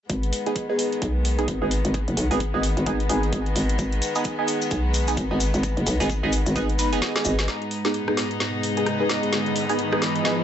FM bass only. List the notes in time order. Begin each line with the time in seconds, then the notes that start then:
0.10 G#1
1.02 B1
1.48 G#1
1.62 G#1
1.85 G#1
2.08 F#1
2.17 B1
2.31 G#1
2.54 G#1
2.77 G#1
2.86 G#1
3.09 G#1
3.33 G#1
3.56 G#1
3.79 G#1
4.71 B1
5.17 G#1
5.31 G#1
5.54 G#1
5.77 F#1
5.86 B1
6.00 G#1
6.23 G#1
6.46 G#1
6.56 G#1
7.25 G#1